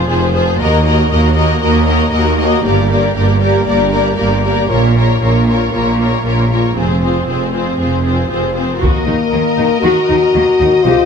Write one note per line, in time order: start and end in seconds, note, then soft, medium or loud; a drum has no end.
0.08 0.54 F1 soft
0.08 0.54 F2 medium
0.08 0.35 F3 soft
0.08 0.34 F4 soft
0.08 0.33 G#4 soft
0.08 0.33 C5 soft
0.34 0.60 F3 soft
0.34 0.60 F4 soft
0.34 0.59 G#4 soft
0.34 0.59 C5 soft
0.59 1.05 D#2 medium
0.59 0.85 A#3 soft
0.59 0.85 F#4 soft
0.59 0.83 A#4 soft
0.59 0.83 D#5 soft
0.84 1.10 A#3 soft
0.84 1.10 F#4 soft
0.84 1.10 A#4 soft
0.84 1.10 D#5 soft
1.10 1.56 D#2 medium
1.10 1.57 D#2 medium
1.10 1.35 A#3 soft
1.10 1.35 F#4 soft
1.10 1.34 A#4 soft
1.10 1.34 D#5 soft
1.35 1.62 A#3 soft
1.35 1.62 F#4 soft
1.35 1.60 A#4 soft
1.35 1.60 D#5 soft
1.61 2.08 D#2 medium
1.61 1.87 A#3 soft
1.61 1.86 F#4 soft
1.61 1.85 A#4 soft
1.61 1.85 D#5 soft
1.86 2.11 A#3 soft
1.86 2.12 F#4 soft
1.86 2.10 A#4 soft
1.86 2.10 D#5 soft
2.11 2.59 D#2 medium
2.11 2.37 A#3 soft
2.11 2.37 F#4 soft
2.11 2.37 A#4 soft
2.11 2.37 D#5 soft
2.38 2.63 A#3 soft
2.38 2.64 F#4 soft
2.38 2.62 A#4 soft
2.38 2.64 D#5 soft
2.63 3.11 G1 medium
2.63 3.10 G2 soft
2.63 2.89 A#3 soft
2.63 2.89 G4 soft
2.63 2.88 A#4 soft
2.63 2.88 D5 soft
2.89 3.15 A#3 soft
2.89 3.15 G4 soft
2.89 3.14 A#4 soft
2.89 3.14 D5 soft
3.15 3.61 G1 soft
3.15 3.61 G2 soft
3.15 3.40 A#3 soft
3.15 3.40 G4 soft
3.15 3.39 A#4 soft
3.15 3.40 D5 soft
3.41 3.65 A#3 soft
3.41 3.66 G4 soft
3.41 3.65 A#4 soft
3.41 3.65 D5 soft
3.67 4.13 G1 medium
3.67 4.13 G2 soft
3.67 3.91 A#3 soft
3.67 3.91 G4 soft
3.67 3.90 A#4 soft
3.67 3.90 D5 soft
3.91 4.16 A#3 soft
3.91 4.17 G4 soft
3.91 4.15 A#4 soft
3.91 4.16 D5 soft
4.16 4.65 G1 soft
4.16 4.64 G2 soft
4.16 4.43 A#3 soft
4.16 4.43 G4 soft
4.16 4.43 A#4 soft
4.16 4.43 D5 soft
4.44 4.70 A#3 soft
4.44 4.70 G4 soft
4.44 4.68 A#4 soft
4.44 4.70 D5 soft
4.69 5.16 A#1 soft
4.69 5.15 A#2 soft
4.69 4.94 A#3 soft
4.69 4.94 F4 soft
4.69 4.95 A#4 soft
4.69 4.95 C#5 soft
4.95 5.20 A#3 soft
4.95 5.20 F4 soft
4.95 5.21 A#4 soft
4.95 5.22 C#5 soft
5.21 5.67 A#1 soft
5.21 5.67 A#2 soft
5.21 5.46 A#3 soft
5.21 5.46 F4 soft
5.21 5.47 A#4 soft
5.21 5.47 C#5 soft
5.48 5.72 A#3 soft
5.48 5.71 F4 soft
5.48 5.72 A#4 soft
5.48 5.72 C#5 soft
5.72 6.18 A#1 soft
5.72 6.18 A#2 soft
5.72 5.97 A#3 soft
5.72 5.97 F4 soft
5.72 5.98 A#4 soft
5.72 5.98 C#5 soft
5.99 6.23 A#3 soft
5.99 6.23 F4 soft
5.99 6.24 A#4 soft
5.99 6.25 C#5 soft
6.24 6.70 A#1 soft
6.24 6.69 A#2 soft
6.24 6.49 A#3 soft
6.24 6.49 F4 soft
6.24 6.50 A#4 soft
6.24 6.50 C#5 soft
6.50 6.75 A#3 soft
6.50 6.75 F4 soft
6.50 6.76 A#4 soft
6.50 6.76 C#5 soft
6.75 7.21 F1 soft
6.75 7.21 F2 soft
6.75 7.01 C4 soft
6.75 7.01 F4 soft
6.75 7.01 G#4 soft
6.75 7.01 C5 soft
7.02 7.27 C4 soft
7.02 7.27 F4 soft
7.02 7.26 G#4 soft
7.02 7.26 C5 soft
7.27 7.73 F1 soft
7.27 7.72 F2 soft
7.27 7.52 C4 soft
7.27 7.52 F4 soft
7.27 7.51 G#4 soft
7.27 7.52 C5 soft
7.52 7.78 C4 soft
7.52 7.78 F4 soft
7.52 7.77 G#4 soft
7.52 7.77 C5 soft
7.78 8.24 F1 soft
7.78 8.24 F2 soft
7.78 8.03 C4 soft
7.78 8.03 F4 soft
7.78 8.02 G#4 soft
7.78 8.03 C5 soft
8.03 8.28 C4 soft
8.03 8.28 F4 soft
8.03 8.29 G#4 soft
8.03 8.29 C5 soft
8.29 8.75 F1 soft
8.29 8.75 F2 soft
8.29 8.53 C4 soft
8.29 8.53 F4 soft
8.29 8.53 G#4 soft
8.29 8.53 C5 soft
8.54 8.80 C4 soft
8.54 8.80 F4 soft
8.54 8.80 G#4 soft
8.54 8.80 C5 soft
8.79 8.89 D#2 soft
8.79 8.90 D#3 soft
8.79 9.79 A#3 medium
8.79 9.04 F#4 soft
8.79 10.82 A#4 soft
8.79 11.05 D#5 soft
8.79 taiko soft
9.06 9.15 D#2 soft
9.06 9.14 D#3 soft
9.06 9.14 D#4 soft
9.32 9.41 D#2 soft
9.32 9.40 D#3 soft
9.32 9.40 A#3 soft
9.57 9.66 D#2 soft
9.57 9.66 D#3 soft
9.57 9.65 D#4 soft
9.80 9.92 D#2 soft
9.80 9.91 D#3 soft
9.80 10.82 F#4 medium
9.80 10.07 F#4 medium
10.09 10.17 D#2 soft
10.09 10.17 D#3 soft
10.09 10.17 D#4 soft
10.34 10.43 D#2 soft
10.34 10.42 D#3 soft
10.34 10.42 A#3 soft
10.59 10.69 D#2 soft
10.59 10.68 D#3 soft
10.59 10.67 D#4 soft
10.83 10.94 C2 medium
10.83 10.94 C3 medium
10.83 11.05 F4 medium
10.83 11.05 G4 medium
10.83 11.05 C5 soft